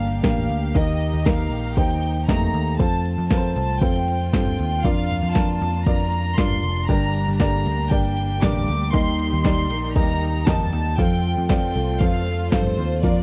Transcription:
Already playing: G1 G2 A#3 D4 G4 A#4 F5
0.23 A1 A#3 D4 G4 A#4 F5, kick, snare, clap, ride
0.36 floor tom
0.49 D2, ride
0.74 D#2 D#3 A#3 D#4 G4 A#4 D#5 A#5, kick, ride
1.01 ride
1.14 D#2
1.26 A#3 D#4 G4 A#4 F5, kick, snare, clap, ride
1.52 A#1, ride
1.77 D#2 A#3 D#4 G4 C5 G5, kick, ride
1.91 ride
2.03 ride
2.28 F2 A3 A#3 D#4 G4 A#5, kick, snare, clap, ride
2.42 floor tom
2.54 D#2, ride
2.78 F2 A3 C4 F4 A4 C5 A5, kick, ride
3.05 ride
3.18 F2
3.30 C4 F4 A4 A#4 A5, kick, snare, clap, ride
3.37 C5
3.56 C2, ride
3.80 F2 C4 F4 A4 C5 G5, kick, ride
3.96 ride
4.08 ride
4.32 G2 C4 F4 A4 C5 G5, kick, snare, clap, ride
4.46 floor tom
4.59 D#2, ride
4.83 F2 A#3 D4 F4 A#4 D5 F5, kick, ride
5.10 floor tom, ride
5.23 F2
5.35 D4 F4 A#4 F5 A5, kick, snare, clap, ride
5.62 F2, ride
5.74 ride
5.87 F2 D4 F4 A#4 D5 A#5, kick, ride
6.00 ride
6.12 ride
6.37 G2 D4 F4 A#4 D5 C6, kick, snare, clap, ride
6.50 floor tom
6.62 F1, ride
6.88 G1 G2 D3 G3 A#3 D4 G4 A#4 D5 A#5, kick, ride
7.14 ride
7.28 G1
7.39 G2 D3 G3 A#3 D4 G4 A#4 D5 A#5, kick, snare, clap, ride
7.65 D2 G3 A#3 D4 A#4, ride
7.90 G1 G3 A#3 D4 G4 A#4 D5 G5, kick, ride
8.05 ride
8.17 ride
8.42 A1 G2 D3 G3 A#3 D4 G4 A#4 D5 D6, kick, snare, clap, ride
8.55 floor tom
8.68 D2 G3 A#3 D4 A#4, ride
8.93 D#2 D#3 G3 A#3 D#4 G4 A#4 D#5 C6, kick, ride
9.19 ride
9.33 D#2
9.43 D#3 G3 A#3 D#4 G4 A#4 D5 C6, kick, snare, clap, ride
9.70 A#1 A#3 D#4 A#4, ride
9.95 D#2 G3 A#3 D#4 G4 A#4 D#5 A#5, kick, ride
10.09 ride
10.21 ride
10.46 F2 D#3 G3 A#3 D#4 G4 A#4 D#5 A5, kick, snare, clap, ride
10.60 floor tom
10.72 D#2 A#3 D#4 A#4, ride
10.97 F2 F3 A3 C4 F4 A4 C5 F5 G5, kick, ride
11.23 ride
11.37 F2
11.49 F3 C4 F4 A4 C5 D5 G5, kick, snare, clap, ride
11.75 C2 C4 F4 A4, ride
12.01 F2 F3 C4 F4 A4 C5 F5, kick, ride
12.14 ride
12.26 ride
12.52 G2 F3 C4 F4 A4 C5 F5, kick, snare, clap, ride
12.65 floor tom
12.78 D#2 C4 F4 A4, ride
13.03 F2 F3 A#3 D4 F4 A#4 D5 F5, kick, ride

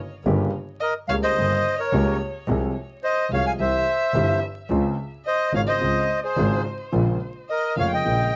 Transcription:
0.25 G1 G2 C#3 G3 A#3 G4
0.80 A#4 D#5
1.08 C#2 C#3 G3 A#3 G4 C#5 F5
1.23 C5 D#5
1.36 G1 G2 C#3 G3 A#3 G4
1.79 A#4 C#5
1.92 C#2 C#3 G3 A#3 G4
2.48 C2 C3 F3 G#3 C4 G#4
3.03 C5 D#5
3.30 C2 C3 F3 G#3 C4 G#4 F5
3.34 C#5
3.47 F5 G#5
3.58 C2 C3 E3 G3 C4 G4 C5 E5
4.14 G1 G2 E3 G3 C4 G4
4.70 C#2 C#3 G#3 C4 F4
5.26 C5 D#5
5.53 G#1 G#2 C#3 G#3 C4 F4 C#5 F5
5.67 C5 D#5
5.81 C#2 C#3 G#3 C4 F4
6.24 G#4 C5
6.37 G#1 G#2 C#3 G#3 C4 F4
6.92 A#1 A#2 C#3 G#3 A#3 F4
7.49 A#4 D#5
7.76 F1 F2 C#3 G#3 A#3 F4 C#5 F5
7.91 D#5 G5
8.04 A#1 A#2 C#3 G#3 A#3 F4

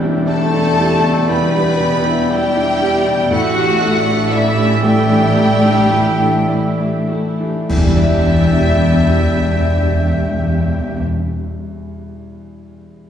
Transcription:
Already playing: E1 E2 B2 E3 G3 B3 D4 E4 B4 D5 G5
0.01 D4 E4 E5
0.26 A3 E4 G4 A4 D5 A5 D6
0.52 D4 E4 B5
0.77 G3 E4 G4 D6
1.03 B2 D4 E4 E5
1.27 E2 G3 B3 E4 G4 B4 B5
1.53 G3 D4 E4
1.79 B2 E4 G4
2.04 D4 E4 E5
2.29 G3 E4 G4 D5 G5 D6
2.56 D4 E4
2.80 G3 E4 G4 D6
3.05 B2 D4 E4 E5
3.30 A1 A2 E4 F#4 D5 E5 F#5
3.55 E3 A3 D4 G4
3.80 A3 E4 D5
4.06 D4 E4 G4 A4
4.31 E3 E4 D5 E5
4.56 D4 E4 G4 D6
4.82 G3 A3 E4 G4 E5 G5
5.08 E3 D4 G4 A4
5.35 A2 E3 E4
5.63 A3 D4 G4
5.91 E3 E4 D5
6.20 D4 E4 G4 A4
6.48 E4 D5 E5
6.78 D4 E4 G4 D6
7.08 A3 E4 E5
7.40 E3 D4 G4 A4
7.69 E1 E2 D4 E4 G4 D5 E5 G5, concert bass drum, crash
7.76 E2 E3
7.83 E2 G3
7.90 E2 E4
7.97 E2 D5
8.04 E2 E5
8.10 E2
8.17 E2
8.25 E2
8.31 E2
8.38 E2
8.45 E2
8.52 E2
8.59 E2
8.65 E2
8.72 E2
8.78 E2
8.85 E2
8.92 E2
8.99 E2
9.06 E2
9.12 E2
9.19 E2
9.25 E2
9.32 E2
9.38 E2
9.45 E2
9.52 E2
9.59 E2
9.66 E2
9.72 E2
9.79 E2
9.85 E2
9.92 E2
9.98 E2
10.05 E2
10.12 E2
10.18 E2
10.25 E2
10.32 E2
10.38 E2
10.44 E2
10.51 E2
10.58 E2
10.65 E2
10.72 E2
10.78 E2
10.85 E2
10.91 E2
10.98 E2

